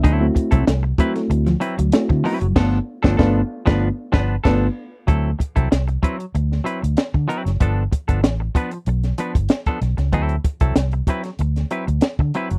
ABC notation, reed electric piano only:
X:1
M:4/4
L:1/16
Q:1/4=95
K:Dmix
V:1 name="Reed electric piano"
[B,D] [A,CEF]3 z2 [A,CEF]3 z3 [A,CEF]3 z | [A,B,D=F]2 z [A,B,DF] [A,B,DF]2 z [A,B,DF]2 z3 [A,B,DFB]2 z2 | z16 | z16 |
z16 |]